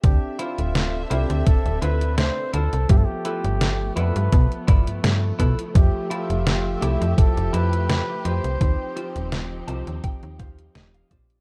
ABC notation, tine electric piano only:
X:1
M:4/4
L:1/8
Q:"Swing 16ths" 1/4=84
K:Ddor
V:1 name="Tine electric piano"
[CD]3 [CD]4- [CD] | [F,B,Ae]3 [F,B,Ae]4- [F,B,Ae] | [F,A,Ge]3 [F,A,EG]4- [F,A,EG] | [F,C_EG]3 [F,CEG]4- [F,CEG] |]